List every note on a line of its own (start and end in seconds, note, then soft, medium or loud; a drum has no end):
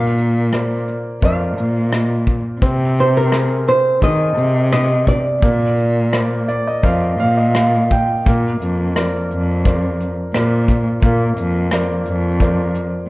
0.00 0.92 A#2 medium
0.00 2.59 A#3 medium
0.00 1.24 F5 medium
0.18 closed hi-hat soft
0.52 1.21 A#4 soft
0.52 1.21 C5 soft
0.52 1.21 D5 soft
0.52 cross-stick medium
0.52 closed hi-hat soft
0.88 closed hi-hat soft
1.22 1.50 F2 medium
1.22 1.91 A#4 soft
1.22 1.91 C5 soft
1.22 1.91 D5 soft
1.22 1.94 F5 medium
1.22 kick medium
1.22 closed hi-hat medium
1.57 2.39 A#2 medium
1.57 closed hi-hat soft
1.92 2.25 D#5 medium
1.92 cross-stick medium
1.92 closed hi-hat medium
2.27 kick medium
2.27 closed hi-hat soft
2.62 3.71 C3 medium
2.62 5.39 C4 medium
2.62 kick medium
2.62 closed hi-hat medium
2.97 3.17 C5 medium
2.97 closed hi-hat soft
3.17 3.70 A#4 medium
3.32 4.00 G#4 soft
3.32 4.00 A#4 soft
3.32 4.00 C5 soft
3.32 cross-stick medium
3.32 closed hi-hat medium
3.67 4.03 C5 medium
3.67 closed hi-hat soft
4.02 4.29 D#3 medium
4.02 4.70 G#4 soft
4.02 4.71 A#4 soft
4.02 4.71 C5 soft
4.02 4.71 D#5 medium
4.02 kick medium
4.02 closed hi-hat medium
4.36 5.19 C3 medium
4.36 closed hi-hat soft
4.72 5.05 D#5 medium
4.72 cross-stick medium
4.72 closed hi-hat medium
5.07 7.52 D5 medium
5.07 kick medium
5.07 closed hi-hat soft
5.42 6.53 A#2 medium
5.42 8.23 A#3 medium
5.42 kick medium
5.42 closed hi-hat medium
5.78 closed hi-hat soft
6.13 6.82 A#4 soft
6.13 6.82 C5 soft
6.13 6.47 D5 soft
6.13 cross-stick medium
6.13 closed hi-hat medium
6.48 6.65 D5 medium
6.48 closed hi-hat soft
6.67 6.84 D#5 medium
6.83 7.12 F2 medium
6.83 7.53 A#4 soft
6.83 7.54 C5 soft
6.83 7.54 D5 soft
6.83 7.17 F5 medium
6.83 kick medium
6.83 closed hi-hat medium
7.19 8.04 A#2 medium
7.19 7.36 F5 medium
7.19 closed hi-hat soft
7.37 7.54 D#5 medium
7.54 7.89 F5 medium
7.54 cross-stick medium
7.54 closed hi-hat medium
7.91 8.25 G5 medium
7.91 kick medium
7.91 closed hi-hat soft
8.26 8.54 A#2 medium
8.26 10.99 A#3 medium
8.26 kick medium
8.26 closed hi-hat medium
8.61 9.16 F2 medium
8.61 closed hi-hat soft
8.96 9.63 A#4 soft
8.96 9.63 C5 soft
8.96 9.64 D5 soft
8.96 cross-stick medium
8.96 closed hi-hat medium
9.30 10.12 F2 medium
9.30 closed hi-hat soft
9.65 10.33 A#4 soft
9.65 10.33 C5 soft
9.65 10.33 D5 soft
9.65 kick medium
9.65 closed hi-hat medium
10.00 closed hi-hat soft
10.34 10.88 A#2 medium
10.34 11.01 A#4 soft
10.34 11.01 C5 soft
10.34 11.01 D5 soft
10.34 cross-stick medium
10.34 closed hi-hat medium
10.68 kick medium
10.68 closed hi-hat soft
11.02 11.29 A#2 medium
11.02 13.09 A#3 medium
11.02 kick medium
11.02 closed hi-hat medium
11.36 11.91 F2 medium
11.36 closed hi-hat soft
11.71 12.39 A#4 soft
11.71 12.39 C5 soft
11.71 12.39 D5 soft
11.71 cross-stick medium
11.71 closed hi-hat medium
12.05 12.87 F2 medium
12.05 closed hi-hat soft
12.40 13.07 A#4 soft
12.40 13.08 C5 soft
12.40 13.08 D5 soft
12.40 kick medium
12.40 closed hi-hat medium
12.74 closed hi-hat soft